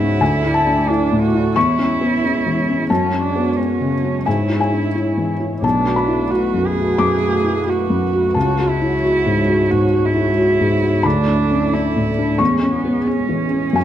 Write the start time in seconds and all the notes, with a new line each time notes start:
Already playing: G#2 G#3 B3 E4 F#4 C#5 F#5
0.00 C#4
0.20 D2 A3 E4 D5 G#5
0.45 E4
0.54 A5
0.67 D4
0.88 D4 E4
1.12 A2
1.22 F#4
1.34 E4
1.55 E2 G#3 E4 C#5 C#6
1.79 C#4
2.01 B3
2.24 C#4
2.46 E3
2.68 C#4
2.90 F#2 C#4 F#4 A5
3.13 C#4
3.23 D4
3.36 B3
3.56 C#4
3.81 C#3
4.04 C#4
4.26 G#2 E4 G#5
4.49 E4
4.60 G#5
4.72 D4
4.95 E4
5.17 E3
5.40 E4
5.62 B1 A3 D4 F#4 B4 A5
5.86 F#4
5.96 B5
6.08 E4
6.31 F#4
6.54 F#2
6.66 G#4
6.77 F#4
6.98 F#2 D6
7.22 F#4
7.44 E4
7.66 F#4
7.90 F#2
8.13 F#4
8.34 C#2 G#3 F#4 C#5 A5
8.58 F#4
8.69 E4
8.82 E4
9.04 F#4
9.26 G#2
9.49 F#4
9.71 G#2 F#4
9.93 F#4
10.05 E4
10.15 E4
10.38 F#4
10.61 G#2
10.83 F#4
11.03 D2 A3 D4 E4 D5 B5
11.27 D4
11.50 C#4
11.73 D4 E4
11.96 A2
12.18 D4
12.38 E2 G#3 C#4 G#4 C#5 C#6
12.62 C#4
12.72 B3
12.85 B3
13.07 C#4
13.29 E3
13.50 C#4
13.73 F#2 F#3 G#5